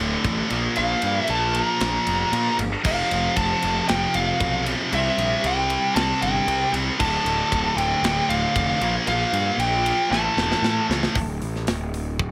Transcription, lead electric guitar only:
0.77 1.16 F5 loud
1.16 1.31 E5 loud
1.30 1.56 A5 loud
1.56 2.55 A#5 loud
2.87 3.37 F5 loud
3.37 3.88 A5 loud
3.88 4.15 G5 loud
4.15 4.63 F5 medium
4.95 5.47 E5 medium
5.46 5.95 G5 loud
5.95 6.22 A5 loud
6.23 6.71 G5 loud
7.00 7.77 A5 loud
7.77 8.31 G5 loud
8.29 8.55 F5 medium
8.56 8.92 F5 medium
9.08 9.61 F5 loud
9.60 10.11 G5 loud
10.12 10.86 A5 medium

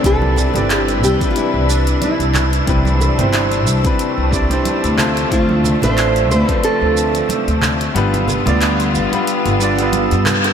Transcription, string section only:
0.00 7.91 C3 medium
0.00 7.91 D4 medium
0.05 4.95 E3 medium
0.05 2.66 B4 medium
2.68 7.91 A3 medium
4.99 7.93 F3 medium
7.95 10.53 D3 medium
7.95 10.53 G3 medium
7.95 10.53 B3 medium
7.95 10.53 F4 medium

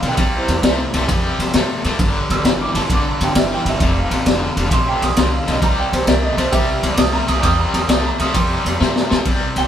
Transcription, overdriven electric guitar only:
0.03 0.16 F2 medium
0.03 0.16 D3 medium
0.17 0.60 C3 medium
0.17 0.60 G3 medium
0.63 0.90 C3 medium
0.63 0.91 A3 medium
0.93 1.07 C3 medium
0.93 1.07 A3 medium
1.08 1.50 C3 medium
1.08 1.51 G3 medium
1.54 1.81 C3 medium
1.54 1.82 A3 medium
1.85 1.98 C3 medium
1.85 1.98 A3 medium
2.00 2.42 G2 medium
2.00 2.42 D3 medium
2.45 2.72 G2 medium
2.45 2.72 E3 medium
2.75 2.88 G2 medium
2.75 2.88 E3 medium
2.90 3.32 G2 medium
2.90 3.32 D3 medium
3.35 3.63 G2 medium
3.35 3.63 E3 medium
3.66 3.79 G2 medium
3.66 3.79 E3 medium
3.81 4.23 F2 medium
3.81 4.23 C3 medium
4.26 4.53 F2 medium
4.26 4.53 D3 medium
4.56 4.69 F2 medium
4.56 4.69 D3 medium
4.70 5.13 F2 medium
4.70 5.13 C3 medium
5.16 5.43 F2 medium
5.16 5.44 D3 medium
5.46 5.60 F2 medium
5.46 5.60 D3 medium
5.62 6.04 C3 medium
5.62 6.04 G3 medium
6.07 6.34 C3 medium
6.07 6.35 A3 medium
6.37 6.50 C3 medium
6.37 6.51 A3 medium
6.51 6.94 C3 medium
6.51 6.94 G3 loud
6.97 7.25 C3 medium
6.97 7.25 A3 medium
7.27 7.40 C3 medium
7.27 7.41 A3 medium
7.42 7.85 C3 medium
7.42 7.85 G3 medium
7.87 8.16 C3 medium
7.87 8.16 A3 medium
8.18 8.32 C3 medium
8.18 8.32 A3 medium
8.34 8.76 C3 medium
8.34 8.77 G3 medium
8.80 9.07 C3 medium
8.80 9.07 A3 medium
9.10 9.23 C3 medium
9.10 9.24 A3 medium
9.25 9.67 C3 medium
9.25 9.67 G3 medium

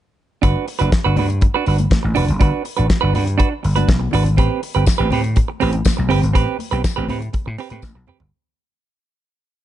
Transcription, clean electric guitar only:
0.42 0.65 D4 medium
0.42 0.66 F#4 medium
0.42 0.66 B4 medium
0.67 muted clean electric guitar stroke soft
0.79 0.91 D4 medium
0.79 0.91 F#4 medium
0.79 0.91 B4 medium
1.04 1.16 D4 medium
1.04 1.17 F#4 medium
1.04 1.18 B4 medium
1.17 1.28 D4 medium
1.17 1.29 F#4 medium
1.17 1.28 B4 medium
1.41 muted clean electric guitar stroke soft
1.54 1.65 D4 medium
1.54 1.66 F#4 medium
1.54 1.67 B4 medium
1.66 1.78 D4 medium
1.66 1.78 F#4 medium
1.66 1.78 B4 medium
1.79 muted clean electric guitar stroke soft
2.03 muted clean electric guitar stroke soft
2.15 2.30 D4 medium
2.15 2.27 F#4 medium
2.15 2.26 B4 medium
2.27 muted clean electric guitar stroke soft
2.40 2.63 D4 medium
2.40 2.64 F#4 medium
2.40 2.64 B4 medium
2.64 muted clean electric guitar stroke soft
2.77 2.87 D4 medium
2.77 2.88 F#4 medium
2.77 2.88 B4 medium
2.89 muted clean electric guitar stroke soft
3.01 3.13 D4 medium
3.01 3.14 F#4 medium
3.01 3.15 B4 medium
3.14 3.25 D4 medium
3.14 3.26 F#4 medium
3.14 3.25 B4 medium
3.26 muted clean electric guitar stroke soft
3.38 3.53 D4 medium
3.38 3.51 F#4 medium
3.38 3.50 B4 loud
3.51 muted clean electric guitar stroke soft
3.63 muted clean electric guitar stroke soft
3.76 3.88 D4 soft
3.76 3.88 F#4 soft
3.76 3.87 B4 medium
4.00 muted clean electric guitar stroke soft
4.13 4.27 D4 medium
4.13 4.26 F#4 medium
4.13 4.25 B4 medium
4.26 muted clean electric guitar stroke soft
4.37 4.60 C4 medium
4.37 4.61 G4 medium
4.37 4.61 B4 medium
4.63 muted clean electric guitar stroke soft
4.75 4.85 C4 medium
4.75 4.86 G4 medium
4.75 4.86 B4 medium
4.86 muted clean electric guitar stroke soft
4.98 5.10 C4 medium
4.98 5.11 G4 medium
4.98 5.12 B4 medium
5.11 5.22 C4 medium
5.11 5.23 G4 medium
5.11 5.22 B4 medium
5.36 muted clean electric guitar stroke soft
5.48 muted clean electric guitar stroke soft
5.60 5.75 C4 medium
5.60 5.73 G4 medium
5.60 5.72 B4 medium
5.73 muted clean electric guitar stroke soft
5.97 muted clean electric guitar stroke soft
6.09 6.24 C4 medium
6.09 6.22 G4 medium
6.09 6.21 B4 loud
6.22 muted clean electric guitar stroke medium
6.33 6.57 C4 medium
6.33 6.58 G4 medium
6.33 6.58 B4 loud
6.59 muted clean electric guitar stroke soft
6.71 6.83 C4 medium
6.71 6.83 G4 medium
6.71 6.83 B4 medium
6.96 7.07 C4 medium
6.96 7.08 G4 medium
6.96 7.09 B4 medium
7.08 7.20 C4 medium
7.08 7.20 G4 medium
7.08 7.19 B4 medium
7.21 muted clean electric guitar stroke medium
7.33 muted clean electric guitar stroke soft
7.46 muted clean electric guitar stroke soft
7.59 7.71 C4 medium
7.59 7.70 G4 medium
7.59 7.69 B4 medium
7.70 7.83 C4 soft
7.70 7.82 G4 medium
7.70 7.82 B4 medium
7.95 muted clean electric guitar stroke medium
8.07 8.22 C4 medium
8.07 8.20 G4 medium
8.07 8.19 B4 medium
8.20 muted clean electric guitar stroke soft

